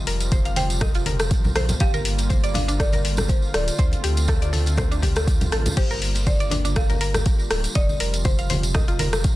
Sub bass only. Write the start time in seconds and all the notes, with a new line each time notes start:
0.07 F1
1.31 A#1
1.81 G1
3.54 D1
3.79 D2
4.04 D2
5.52 A1
5.77 G1
7.51 D1
7.76 F1
8.00 F1
9.24 A#1